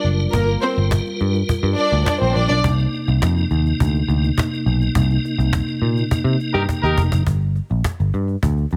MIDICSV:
0, 0, Header, 1, 7, 480
1, 0, Start_track
1, 0, Key_signature, -2, "minor"
1, 0, Tempo, 578035
1, 277, Time_signature, 4, 2, 24, 8
1, 7279, End_track
2, 0, Start_track
2, 0, Title_t, "Horn section"
2, 0, Program_c, 0, 61
2, 5425, Note_on_c, 0, 63, 93
2, 5427, Note_on_c, 0, 67, 91
2, 5430, Note_on_c, 0, 70, 91
2, 5505, Note_off_c, 0, 63, 0
2, 5506, Note_off_c, 0, 67, 0
2, 5508, Note_off_c, 0, 70, 0
2, 5671, Note_on_c, 0, 63, 86
2, 5671, Note_on_c, 0, 67, 81
2, 5671, Note_on_c, 0, 70, 99
2, 5825, Note_off_c, 0, 63, 0
2, 5825, Note_off_c, 0, 67, 0
2, 5825, Note_off_c, 0, 70, 0
2, 7279, End_track
3, 0, Start_track
3, 0, Title_t, "String section"
3, 0, Program_c, 1, 48
3, 275, Note_on_c, 1, 70, 90
3, 276, Note_on_c, 1, 58, 87
3, 372, Note_off_c, 1, 70, 0
3, 373, Note_off_c, 1, 58, 0
3, 512, Note_on_c, 1, 60, 82
3, 515, Note_on_c, 1, 72, 93
3, 610, Note_off_c, 1, 60, 0
3, 611, Note_off_c, 1, 72, 0
3, 1469, Note_on_c, 1, 74, 85
3, 1474, Note_on_c, 1, 62, 82
3, 1663, Note_off_c, 1, 74, 0
3, 1666, Note_off_c, 1, 62, 0
3, 1707, Note_on_c, 1, 74, 78
3, 1708, Note_on_c, 1, 62, 76
3, 1806, Note_off_c, 1, 62, 0
3, 1806, Note_off_c, 1, 74, 0
3, 1832, Note_on_c, 1, 60, 78
3, 1833, Note_on_c, 1, 72, 81
3, 1929, Note_off_c, 1, 60, 0
3, 1929, Note_off_c, 1, 72, 0
3, 1941, Note_on_c, 1, 74, 96
3, 1943, Note_on_c, 1, 62, 90
3, 2042, Note_off_c, 1, 74, 0
3, 2043, Note_off_c, 1, 62, 0
3, 2064, Note_on_c, 1, 62, 77
3, 2065, Note_on_c, 1, 74, 97
3, 2164, Note_off_c, 1, 62, 0
3, 2164, Note_off_c, 1, 74, 0
3, 7279, End_track
4, 0, Start_track
4, 0, Title_t, "Tonewheel organ"
4, 0, Program_c, 2, 16
4, 0, Note_on_c, 2, 55, 64
4, 0, Note_on_c, 2, 65, 52
4, 0, Note_on_c, 2, 70, 72
4, 2157, Note_off_c, 2, 65, 0
4, 2158, Note_off_c, 2, 70, 0
4, 2159, Note_off_c, 2, 55, 0
4, 2196, Note_on_c, 2, 48, 67
4, 2198, Note_on_c, 2, 58, 63
4, 2199, Note_on_c, 2, 63, 73
4, 6003, Note_off_c, 2, 48, 0
4, 6004, Note_off_c, 2, 58, 0
4, 6004, Note_off_c, 2, 63, 0
4, 7279, End_track
5, 0, Start_track
5, 0, Title_t, "Picked electric bass"
5, 0, Program_c, 3, 34
5, 36, Note_on_c, 3, 30, 81
5, 211, Note_off_c, 3, 30, 0
5, 277, Note_on_c, 3, 31, 107
5, 451, Note_off_c, 3, 31, 0
5, 643, Note_on_c, 3, 31, 104
5, 815, Note_off_c, 3, 31, 0
5, 1003, Note_on_c, 3, 43, 83
5, 1175, Note_off_c, 3, 43, 0
5, 1354, Note_on_c, 3, 43, 104
5, 1441, Note_off_c, 3, 43, 0
5, 1595, Note_on_c, 3, 38, 94
5, 1682, Note_off_c, 3, 38, 0
5, 1840, Note_on_c, 3, 34, 85
5, 1925, Note_off_c, 3, 34, 0
5, 1957, Note_on_c, 3, 34, 87
5, 2043, Note_off_c, 3, 34, 0
5, 2076, Note_on_c, 3, 35, 83
5, 2162, Note_off_c, 3, 35, 0
5, 2195, Note_on_c, 3, 36, 98
5, 2369, Note_off_c, 3, 36, 0
5, 2558, Note_on_c, 3, 36, 98
5, 2643, Note_off_c, 3, 36, 0
5, 2677, Note_on_c, 3, 41, 101
5, 2850, Note_off_c, 3, 41, 0
5, 2914, Note_on_c, 3, 39, 88
5, 3088, Note_off_c, 3, 39, 0
5, 3162, Note_on_c, 3, 38, 84
5, 3333, Note_off_c, 3, 38, 0
5, 3391, Note_on_c, 3, 38, 94
5, 3566, Note_off_c, 3, 38, 0
5, 3871, Note_on_c, 3, 35, 80
5, 4046, Note_off_c, 3, 35, 0
5, 4117, Note_on_c, 3, 36, 98
5, 4290, Note_off_c, 3, 36, 0
5, 4471, Note_on_c, 3, 36, 96
5, 4646, Note_off_c, 3, 36, 0
5, 4830, Note_on_c, 3, 46, 83
5, 5005, Note_off_c, 3, 46, 0
5, 5185, Note_on_c, 3, 48, 102
5, 5275, Note_off_c, 3, 48, 0
5, 5434, Note_on_c, 3, 43, 90
5, 5521, Note_off_c, 3, 43, 0
5, 5674, Note_on_c, 3, 39, 97
5, 5762, Note_off_c, 3, 39, 0
5, 5794, Note_on_c, 3, 29, 90
5, 5882, Note_off_c, 3, 29, 0
5, 5917, Note_on_c, 3, 30, 94
5, 6004, Note_off_c, 3, 30, 0
5, 6036, Note_on_c, 3, 31, 87
5, 6298, Note_off_c, 3, 31, 0
5, 6400, Note_on_c, 3, 34, 76
5, 6486, Note_off_c, 3, 34, 0
5, 6642, Note_on_c, 3, 31, 83
5, 6728, Note_off_c, 3, 31, 0
5, 6759, Note_on_c, 3, 43, 78
5, 6934, Note_off_c, 3, 43, 0
5, 6999, Note_on_c, 3, 38, 88
5, 7174, Note_off_c, 3, 38, 0
5, 7246, Note_on_c, 3, 41, 73
5, 7279, Note_off_c, 3, 41, 0
5, 7279, End_track
6, 0, Start_track
6, 0, Title_t, "Cajon"
6, 46, Note_on_c, 9, 38, 34
6, 129, Note_off_c, 9, 38, 0
6, 166, Note_on_c, 9, 38, 26
6, 249, Note_off_c, 9, 38, 0
6, 277, Note_on_c, 9, 36, 112
6, 360, Note_off_c, 9, 36, 0
6, 396, Note_on_c, 9, 38, 28
6, 479, Note_off_c, 9, 38, 0
6, 522, Note_on_c, 9, 38, 33
6, 605, Note_off_c, 9, 38, 0
6, 637, Note_on_c, 9, 38, 24
6, 720, Note_off_c, 9, 38, 0
6, 756, Note_on_c, 9, 36, 109
6, 762, Note_on_c, 9, 38, 96
6, 839, Note_off_c, 9, 36, 0
6, 845, Note_off_c, 9, 38, 0
6, 878, Note_on_c, 9, 38, 27
6, 961, Note_off_c, 9, 38, 0
6, 996, Note_on_c, 9, 38, 36
6, 1079, Note_off_c, 9, 38, 0
6, 1119, Note_on_c, 9, 38, 25
6, 1202, Note_off_c, 9, 38, 0
6, 1238, Note_on_c, 9, 36, 96
6, 1321, Note_off_c, 9, 36, 0
6, 1356, Note_on_c, 9, 38, 24
6, 1439, Note_off_c, 9, 38, 0
6, 1471, Note_on_c, 9, 38, 32
6, 1554, Note_off_c, 9, 38, 0
6, 1597, Note_on_c, 9, 38, 24
6, 1680, Note_off_c, 9, 38, 0
6, 1714, Note_on_c, 9, 36, 100
6, 1724, Note_on_c, 9, 38, 98
6, 1797, Note_off_c, 9, 36, 0
6, 1807, Note_off_c, 9, 38, 0
6, 1846, Note_on_c, 9, 38, 23
6, 1929, Note_off_c, 9, 38, 0
6, 1963, Note_on_c, 9, 38, 34
6, 2046, Note_off_c, 9, 38, 0
6, 2082, Note_on_c, 9, 38, 25
6, 2165, Note_off_c, 9, 38, 0
6, 2194, Note_on_c, 9, 36, 116
6, 2277, Note_off_c, 9, 36, 0
6, 2319, Note_on_c, 9, 38, 29
6, 2402, Note_off_c, 9, 38, 0
6, 2444, Note_on_c, 9, 38, 34
6, 2527, Note_off_c, 9, 38, 0
6, 2553, Note_on_c, 9, 38, 25
6, 2636, Note_off_c, 9, 38, 0
6, 2674, Note_on_c, 9, 36, 106
6, 2679, Note_on_c, 9, 38, 109
6, 2757, Note_off_c, 9, 36, 0
6, 2762, Note_off_c, 9, 38, 0
6, 2800, Note_on_c, 9, 38, 26
6, 2883, Note_off_c, 9, 38, 0
6, 2912, Note_on_c, 9, 38, 34
6, 2995, Note_off_c, 9, 38, 0
6, 3039, Note_on_c, 9, 38, 24
6, 3122, Note_off_c, 9, 38, 0
6, 3158, Note_on_c, 9, 36, 104
6, 3241, Note_off_c, 9, 36, 0
6, 3281, Note_on_c, 9, 38, 23
6, 3364, Note_off_c, 9, 38, 0
6, 3396, Note_on_c, 9, 38, 36
6, 3479, Note_off_c, 9, 38, 0
6, 3518, Note_on_c, 9, 38, 25
6, 3601, Note_off_c, 9, 38, 0
6, 3634, Note_on_c, 9, 36, 109
6, 3649, Note_on_c, 9, 38, 95
6, 3717, Note_off_c, 9, 36, 0
6, 3732, Note_off_c, 9, 38, 0
6, 3767, Note_on_c, 9, 38, 27
6, 3850, Note_off_c, 9, 38, 0
6, 3878, Note_on_c, 9, 38, 38
6, 3961, Note_off_c, 9, 38, 0
6, 3996, Note_on_c, 9, 38, 27
6, 4080, Note_off_c, 9, 38, 0
6, 4113, Note_on_c, 9, 36, 105
6, 4196, Note_off_c, 9, 36, 0
6, 4237, Note_on_c, 9, 38, 25
6, 4320, Note_off_c, 9, 38, 0
6, 4359, Note_on_c, 9, 38, 33
6, 4442, Note_off_c, 9, 38, 0
6, 4475, Note_on_c, 9, 38, 21
6, 4483, Note_off_c, 9, 38, 0
6, 4483, Note_on_c, 9, 38, 38
6, 4566, Note_off_c, 9, 38, 0
6, 4591, Note_on_c, 9, 36, 113
6, 4594, Note_on_c, 9, 38, 96
6, 4674, Note_off_c, 9, 36, 0
6, 4677, Note_off_c, 9, 38, 0
6, 4715, Note_on_c, 9, 38, 27
6, 4798, Note_off_c, 9, 38, 0
6, 4954, Note_on_c, 9, 38, 28
6, 5037, Note_off_c, 9, 38, 0
6, 5076, Note_on_c, 9, 36, 90
6, 5159, Note_off_c, 9, 36, 0
6, 5200, Note_on_c, 9, 38, 22
6, 5283, Note_off_c, 9, 38, 0
6, 5313, Note_on_c, 9, 38, 34
6, 5396, Note_off_c, 9, 38, 0
6, 5434, Note_on_c, 9, 38, 23
6, 5517, Note_off_c, 9, 38, 0
6, 5553, Note_on_c, 9, 36, 92
6, 5564, Note_on_c, 9, 38, 51
6, 5636, Note_off_c, 9, 36, 0
6, 5647, Note_off_c, 9, 38, 0
6, 5684, Note_on_c, 9, 38, 26
6, 5767, Note_off_c, 9, 38, 0
6, 5793, Note_on_c, 9, 36, 92
6, 5876, Note_off_c, 9, 36, 0
6, 5913, Note_on_c, 9, 36, 97
6, 5996, Note_off_c, 9, 36, 0
6, 6033, Note_on_c, 9, 36, 92
6, 6116, Note_off_c, 9, 36, 0
6, 6155, Note_on_c, 9, 38, 22
6, 6238, Note_off_c, 9, 38, 0
6, 6274, Note_on_c, 9, 38, 27
6, 6357, Note_off_c, 9, 38, 0
6, 6391, Note_on_c, 9, 38, 21
6, 6474, Note_off_c, 9, 38, 0
6, 6514, Note_on_c, 9, 36, 100
6, 6518, Note_on_c, 9, 38, 90
6, 6597, Note_off_c, 9, 36, 0
6, 6601, Note_off_c, 9, 38, 0
6, 6641, Note_on_c, 9, 38, 20
6, 6724, Note_off_c, 9, 38, 0
6, 6755, Note_on_c, 9, 38, 29
6, 6838, Note_off_c, 9, 38, 0
6, 6876, Note_on_c, 9, 38, 24
6, 6959, Note_off_c, 9, 38, 0
6, 6998, Note_on_c, 9, 36, 91
6, 7081, Note_off_c, 9, 36, 0
6, 7119, Note_on_c, 9, 38, 21
6, 7202, Note_off_c, 9, 38, 0
6, 7231, Note_on_c, 9, 38, 32
6, 7279, Note_off_c, 9, 38, 0
6, 7279, End_track
7, 0, Start_track
7, 0, Title_t, "Muted picked electric bass strokes"
7, 1240, Note_on_c, 9, 29, 50
7, 1323, Note_off_c, 9, 29, 0
7, 5079, Note_on_c, 9, 29, 46
7, 5162, Note_off_c, 9, 29, 0
7, 7279, End_track
0, 0, End_of_file